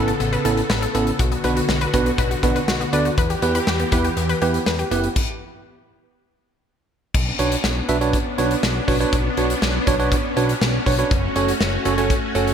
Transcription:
Already playing: analog synth bass A1, string machine C#3 B3 A4, tine electric piano B3 C#4 E4 A4
0.08 synth arpeggio sound A4, closed hi-hat
0.20 analog synth bass A1, synth arpeggio sound B3, closed hi-hat
0.33 synth arpeggio sound B4, closed hi-hat
0.45 analog synth bass A1, tine electric piano B3 C#4 E4 A4, synth arpeggio sound A4, closed hi-hat
0.57 closed hi-hat
0.70 analog synth bass A1, synth arpeggio sound B4, snare
0.82 synth arpeggio sound A4, closed hi-hat
0.95 analog synth bass A1, synth arpeggio sound B3, tine electric piano B3 C#4 E4 A4, closed hi-hat
1.07 closed hi-hat
1.19 analog synth bass B1, string machine D3 F#4, synth arpeggio sound F#4, kick, closed hi-hat
1.32 synth arpeggio sound B3, closed hi-hat
1.44 analog synth bass B1, tine electric piano B3 D4 F#4 B4, synth arpeggio sound B4, closed hi-hat
1.56 synth arpeggio sound F#4, closed hi-hat
1.69 analog synth bass B1, synth arpeggio sound B3, snare
1.81 synth arpeggio sound B4, closed hi-hat
1.94 analog synth bass B1, tine electric piano B3 D4 F#4 B4, synth arpeggio sound F#4, kick, closed hi-hat
2.06 synth arpeggio sound B3, closed hi-hat
2.18 analog synth bass B1, synth arpeggio sound B4, kick, closed hi-hat
2.31 synth arpeggio sound F#4, closed hi-hat
2.43 analog synth bass B1, synth arpeggio sound B3, tine electric piano B3 D4 F#4 B4, kick, closed hi-hat
2.56 synth arpeggio sound B4, closed hi-hat
2.68 analog synth bass B1, synth arpeggio sound F#4, snare
2.80 synth arpeggio sound B3, closed hi-hat
2.93 analog synth bass D2, tine electric piano B3 D4 F#4 D5, synth arpeggio sound B4, closed hi-hat
3.05 synth arpeggio sound F#4, closed hi-hat
3.18 analog synth bass E2, string machine E3 G4, synth arpeggio sound B4, kick, closed hi-hat
3.30 synth arpeggio sound G4, closed hi-hat
3.42 analog synth bass E2, tine electric piano B3 E4 G4 B4, synth arpeggio sound B3, closed hi-hat
3.55 synth arpeggio sound B4, closed hi-hat
3.67 analog synth bass E2, synth arpeggio sound G4, snare
3.79 synth arpeggio sound B3, closed hi-hat
3.92 analog synth bass E2, tine electric piano B3 E4 G4 B4, synth arpeggio sound B4, kick, closed hi-hat
4.04 synth arpeggio sound G4, closed hi-hat
4.17 analog synth bass E2, synth arpeggio sound B3, closed hi-hat
4.29 synth arpeggio sound B4, closed hi-hat
4.42 analog synth bass E2, tine electric piano B3 E4 G4 B4, synth arpeggio sound G4, closed hi-hat
4.54 closed hi-hat
4.66 analog synth bass E2, synth arpeggio sound B4, snare
4.79 synth arpeggio sound G4, closed hi-hat
4.91 analog synth bass F#1, synth arpeggio sound B3, tine electric piano B3 E4 G4 B4, closed hi-hat
5.04 closed hi-hat
5.16 kick, crash
7.14 analog synth bass B1, string machine B3 C#4 D4, kick, crash
7.39 analog synth bass B1, tine electric piano D4 F#4 B4 C#5, closed hi-hat
7.52 closed hi-hat
7.64 analog synth bass B1, snare
7.89 analog synth bass B1, tine electric piano D4 F#4 B4 E5, closed hi-hat
8.01 tine electric piano D4 F#4 B4 C#5, closed hi-hat
8.13 kick, closed hi-hat
8.38 analog synth bass B1, tine electric piano D4 F#4 B4 C#5, closed hi-hat
8.51 closed hi-hat
8.63 analog synth bass B1, snare
8.88 analog synth bass B1, tine electric piano D4 F#4 B4 C#5, kick, open hi-hat
9.00 tine electric piano D4 F#4 B4 C#5, closed hi-hat
9.13 analog synth bass B1, kick, closed hi-hat
9.37 analog synth bass B1, tine electric piano D4 F#4 B4 C#5, closed hi-hat
9.50 closed hi-hat
9.62 analog synth bass B1, snare
9.87 analog synth bass B1, tine electric piano D4 F#4 B4 C#5, kick, closed hi-hat
10.00 tine electric piano D4 F#4 B4 C#5, closed hi-hat
10.12 kick, closed hi-hat
10.37 analog synth bass B1, tine electric piano D4 F#4 B4 C#5, closed hi-hat
10.49 closed hi-hat
10.62 analog synth bass B1, snare
10.86 analog synth bass B1, tine electric piano D4 F#4 B4 C#5, kick, open hi-hat
10.99 tine electric piano D4 F#4 B4 C#5, closed hi-hat
11.11 analog synth bass F#1, string machine A3 F#4, kick, closed hi-hat
11.36 analog synth bass F#1, tine electric piano C#4 F#4 A4 C#5, closed hi-hat
11.48 closed hi-hat
11.61 analog synth bass F#1, snare
11.85 analog synth bass F#1, tine electric piano C#4 F#4 A4 C#5, closed hi-hat
11.98 tine electric piano C#4 F#4 A4 C#5, closed hi-hat
12.10 kick, closed hi-hat
12.35 analog synth bass F#1, tine electric piano C#4 F#4 A4 C#5, closed hi-hat
12.48 closed hi-hat

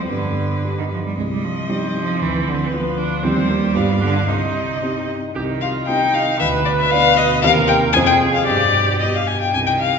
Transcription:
Already playing: grand piano F2 C4 F4 C5
0.09 grand piano G2, cello D3, viola B3, violin B4
0.64 grand piano B3 D4 G4
0.78 cello D#3
0.92 cello F3
1.06 cello G3
1.16 grand piano C2, cello G#3, violin D#5
1.32 cello G3
1.44 cello F3
1.69 cello G3, viola C4, grand piano C4 D#4 G4
1.96 cello F3
2.21 grand piano D2, cello E3, violin B4
2.48 cello D3
2.63 cello E3
2.72 cello F3, viola B3, grand piano B3 F4 B4
2.98 viola D4
3.23 grand piano D#2 C4 D#4 G4, cello G3, viola C4, violin C5
3.49 viola A#3
3.75 grand piano G2 B3 F4 G4, viola B3, violin F5
4.00 cello D3, viola D4
4.27 grand piano C2, cello C3, viola D#4, violin D#5
4.82 grand piano C4 D#4 G4
5.35 grand piano C2, cello D#3, viola G4
5.61 viola F4, violin F5
5.87 cello D#3, grand piano C4 D#4 G4, viola D#4, violin G5
6.14 violin F5
6.39 grand piano D2, cello B2, viola B4, violin E5
6.65 violin D5
6.79 violin E5
6.91 cello B2, grand piano B3 D4 D5, violin F5
7.17 violin D#5
7.42 grand piano D#2 C4 G4 C5, cello C3, viola A#4, violin F5
7.68 violin G5
7.93 grand piano F2 C4 F4 C5, cello C3, viola G#4, violin G#5
8.06 violin G5
8.33 violin F5
8.46 grand piano G2, cello B2, viola G4, violin D5
9.00 grand piano B3 D4 G4, violin D#5
9.15 violin F5
9.27 violin G#5
9.41 violin G5
9.54 grand piano C2, cello D#3, violin G#5
9.67 violin G5
9.80 violin F5

